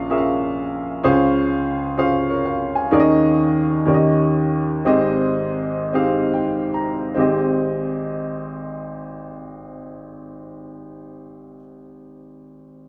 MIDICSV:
0, 0, Header, 1, 2, 480
1, 0, Start_track
1, 0, Key_signature, -4, "major"
1, 0, Tempo, 625000
1, 799, Time_signature, 6, 3, 24, 8
1, 2721, Tempo, 659341
1, 3681, Tempo, 711744
1, 4161, Tempo, 763359
1, 4641, Tempo, 833333
1, 5121, Tempo, 874636
1, 8257, End_track
2, 0, Start_track
2, 0, Title_t, "Upright piano"
2, 0, Program_c, 0, 0
2, 0, Control_c, 0, 64, 127
2, 0, Note_on_c, 0, 34, 65
2, 0, Note_on_c, 0, 46, 66
2, 0, Note_on_c, 0, 61, 82
2, 0, Note_on_c, 0, 65, 75
2, 0, Note_on_c, 0, 68, 71
2, 0, Note_on_c, 0, 70, 71
2, 0, Note_on_c, 0, 77, 94
2, 76, Note_off_c, 0, 61, 0
2, 76, Note_on_c, 0, 61, 70
2, 78, Note_off_c, 0, 65, 0
2, 78, Note_on_c, 0, 65, 60
2, 83, Note_off_c, 0, 68, 0
2, 83, Note_on_c, 0, 68, 64
2, 84, Note_on_c, 0, 76, 63
2, 85, Note_off_c, 0, 70, 0
2, 85, Note_on_c, 0, 70, 65
2, 132, Note_off_c, 0, 76, 0
2, 136, Note_off_c, 0, 77, 0
2, 136, Note_on_c, 0, 77, 74
2, 662, Note_off_c, 0, 61, 0
2, 663, Note_off_c, 0, 65, 0
2, 665, Note_off_c, 0, 68, 0
2, 666, Note_off_c, 0, 70, 0
2, 692, Note_off_c, 0, 77, 0
2, 771, Note_off_c, 0, 34, 0
2, 771, Note_off_c, 0, 46, 0
2, 794, Note_on_c, 0, 61, 87
2, 797, Note_on_c, 0, 68, 82
2, 799, Note_on_c, 0, 65, 83
2, 801, Note_on_c, 0, 37, 71
2, 801, Note_on_c, 0, 49, 69
2, 802, Note_on_c, 0, 72, 82
2, 806, Note_on_c, 0, 77, 87
2, 809, Control_c, 0, 64, 0
2, 921, Control_c, 0, 64, 127
2, 1380, Note_off_c, 0, 61, 0
2, 1382, Note_off_c, 0, 68, 0
2, 1383, Note_off_c, 0, 65, 0
2, 1384, Note_off_c, 0, 72, 0
2, 1386, Note_off_c, 0, 77, 0
2, 1517, Note_on_c, 0, 61, 74
2, 1519, Note_on_c, 0, 65, 61
2, 1519, Note_on_c, 0, 68, 63
2, 1525, Note_on_c, 0, 72, 61
2, 1528, Note_on_c, 0, 77, 84
2, 1761, Note_off_c, 0, 72, 0
2, 1762, Note_off_c, 0, 77, 0
2, 1764, Note_on_c, 0, 73, 62
2, 1770, Note_on_c, 0, 70, 54
2, 1875, Note_off_c, 0, 73, 0
2, 1878, Note_off_c, 0, 70, 0
2, 1885, Note_on_c, 0, 77, 62
2, 1891, Note_on_c, 0, 73, 54
2, 2101, Note_off_c, 0, 61, 0
2, 2102, Note_off_c, 0, 65, 0
2, 2102, Note_off_c, 0, 68, 0
2, 2109, Note_off_c, 0, 77, 0
2, 2112, Note_off_c, 0, 73, 0
2, 2115, Note_on_c, 0, 80, 61
2, 2124, Note_on_c, 0, 77, 52
2, 2206, Note_off_c, 0, 37, 0
2, 2207, Note_off_c, 0, 49, 0
2, 2235, Note_on_c, 0, 61, 89
2, 2240, Note_on_c, 0, 63, 77
2, 2241, Note_on_c, 0, 39, 66
2, 2241, Note_on_c, 0, 51, 72
2, 2243, Note_on_c, 0, 68, 80
2, 2246, Note_on_c, 0, 70, 76
2, 2247, Control_c, 0, 64, 0
2, 2251, Note_on_c, 0, 74, 82
2, 2294, Note_off_c, 0, 74, 0
2, 2301, Note_on_c, 0, 75, 98
2, 2344, Note_off_c, 0, 80, 0
2, 2348, Note_off_c, 0, 77, 0
2, 2362, Control_c, 0, 64, 127
2, 2822, Note_off_c, 0, 61, 0
2, 2824, Note_off_c, 0, 63, 0
2, 2825, Note_off_c, 0, 68, 0
2, 2826, Note_off_c, 0, 70, 0
2, 2853, Note_off_c, 0, 75, 0
2, 2927, Note_off_c, 0, 39, 0
2, 2927, Note_off_c, 0, 51, 0
2, 2948, Note_on_c, 0, 61, 74
2, 2954, Note_on_c, 0, 63, 63
2, 2955, Note_on_c, 0, 51, 67
2, 2957, Note_on_c, 0, 39, 70
2, 2957, Note_on_c, 0, 67, 66
2, 2961, Control_c, 0, 64, 0
2, 2961, Note_on_c, 0, 70, 69
2, 2962, Note_on_c, 0, 74, 58
2, 3006, Note_off_c, 0, 74, 0
2, 3011, Note_on_c, 0, 75, 77
2, 3103, Control_c, 0, 64, 127
2, 3538, Note_off_c, 0, 61, 0
2, 3541, Note_off_c, 0, 63, 0
2, 3542, Note_off_c, 0, 67, 0
2, 3544, Note_off_c, 0, 70, 0
2, 3569, Note_off_c, 0, 75, 0
2, 3652, Note_off_c, 0, 51, 0
2, 3653, Note_off_c, 0, 39, 0
2, 3673, Note_on_c, 0, 60, 81
2, 3675, Note_on_c, 0, 63, 77
2, 3678, Note_on_c, 0, 32, 71
2, 3678, Note_on_c, 0, 44, 71
2, 3679, Note_on_c, 0, 67, 75
2, 3680, Note_on_c, 0, 68, 77
2, 3687, Note_on_c, 0, 75, 89
2, 3689, Control_c, 0, 64, 0
2, 3797, Control_c, 0, 64, 127
2, 4259, Note_off_c, 0, 60, 0
2, 4260, Note_off_c, 0, 63, 0
2, 4262, Note_off_c, 0, 67, 0
2, 4262, Note_off_c, 0, 68, 0
2, 4266, Note_off_c, 0, 75, 0
2, 4386, Note_on_c, 0, 60, 71
2, 4392, Note_on_c, 0, 63, 66
2, 4392, Note_on_c, 0, 67, 64
2, 4394, Note_on_c, 0, 68, 64
2, 4399, Note_on_c, 0, 77, 74
2, 4640, Note_on_c, 0, 79, 62
2, 4859, Note_off_c, 0, 79, 0
2, 4874, Note_on_c, 0, 82, 64
2, 4977, Note_off_c, 0, 60, 0
2, 4979, Note_off_c, 0, 63, 0
2, 4979, Note_off_c, 0, 67, 0
2, 4980, Note_off_c, 0, 68, 0
2, 4983, Note_off_c, 0, 77, 0
2, 5097, Note_off_c, 0, 32, 0
2, 5097, Note_off_c, 0, 44, 0
2, 5103, Note_off_c, 0, 82, 0
2, 5107, Note_on_c, 0, 60, 75
2, 5112, Note_on_c, 0, 63, 69
2, 5122, Note_on_c, 0, 32, 69
2, 5122, Note_on_c, 0, 67, 71
2, 5129, Control_c, 0, 64, 0
2, 5133, Note_on_c, 0, 68, 64
2, 5138, Note_on_c, 0, 75, 78
2, 5214, Control_c, 0, 64, 127
2, 7520, Note_off_c, 0, 60, 0
2, 7525, Note_off_c, 0, 63, 0
2, 7534, Note_off_c, 0, 67, 0
2, 7535, Note_off_c, 0, 32, 0
2, 7545, Note_off_c, 0, 68, 0
2, 7551, Note_off_c, 0, 75, 0
2, 8257, End_track
0, 0, End_of_file